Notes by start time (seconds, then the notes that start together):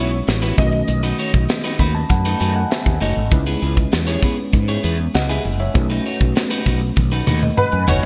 Already playing: B1 G#3 B3 C#4 E4 F#4 B4 C#5
0.12 muted clean electric guitar stroke
0.27 A1, muted clean electric guitar stroke, snare, closed hi-hat
0.42 B3 E4 F#4 B4, snare
0.57 B1 D#3 A3 C#4 F#4 A4 D#5, muted clean electric guitar stroke, kick, closed hi-hat
0.66 B4
0.72 muted clean electric guitar stroke
0.88 B1, muted clean electric guitar stroke, closed hi-hat
1.03 A3 D#4 F#4 B4
1.18 A3 D#4 F#4 C#5, closed hi-hat
1.33 B1, muted clean electric guitar stroke, kick
1.49 muted clean electric guitar stroke, snare, closed hi-hat
1.64 A3 D#4 F#4 B4, snare
1.79 D#2 A3 D#4 F#4 B4 B5, kick, open hi-hat
1.95 A5, muted clean electric guitar stroke
2.09 F#2 F#5, muted clean electric guitar stroke, kick, closed hi-hat
2.25 A3 D#4 F#4 B4
2.40 F#2 A3 D#4 F#4 B4 G#5, closed hi-hat
2.55 F#5, muted clean electric guitar stroke
2.71 E5, snare, closed hi-hat
2.86 D#2, muted clean electric guitar stroke, kick
3.01 F#1 A3 D#4 F#4 C#5 D#5, open hi-hat
3.16 G#1, muted clean electric guitar stroke
3.31 C#2 G#3 C#4 D#4 E4 B4, muted clean electric guitar stroke, kick, closed hi-hat
3.47 B3 E4 G#4 B4
3.62 C#2 B3 E4 G#4 B4, closed hi-hat
3.77 muted clean electric guitar stroke, kick
3.92 E2, muted clean electric guitar stroke, snare, closed hi-hat
4.07 B3 E4 G#4 C#5, snare
4.22 B3 E4 G#4 B4, kick, open hi-hat
4.38 muted clean electric guitar stroke
4.53 G#2, muted clean electric guitar stroke, kick, closed hi-hat
4.68 B3 E4 G#4 C#5
4.83 E2 B3 E4 G#4 B4, closed hi-hat
4.99 muted clean electric guitar stroke
5.14 C#2 D#5 F#5, muted clean electric guitar stroke, snare, closed hi-hat
5.29 B3 E4 G#4 B4 E5 G#5
5.45 F#1, muted clean electric guitar stroke, open hi-hat
5.60 C#5 E5, muted clean electric guitar stroke
5.74 B1 A3 C#4 D#4 F#4 B4, muted clean electric guitar stroke, kick, closed hi-hat
5.90 A3 D#4 F#4 B4
6.05 A3 D#4 F#4 C#5, closed hi-hat
6.20 B1, muted clean electric guitar stroke, kick
6.36 muted clean electric guitar stroke, snare, closed hi-hat
6.50 A3 D#4 F#4 B4
6.66 B1 A3 D#4 F#4 B4, kick, open hi-hat
6.81 muted clean electric guitar stroke
6.96 B1, muted clean electric guitar stroke, kick, high tom
7.12 A3 D#4 F#4 B4
7.27 D#2 A3 D#4 F#4 B4, mid tom
7.42 B4 D#5, muted clean electric guitar stroke, mid tom
7.57 B4 D#5 F#5, mid tom
7.72 F#2 G#5, muted clean electric guitar stroke
7.87 F#1 A3 D#4 F#4 C#5 D#5 F#5, floor tom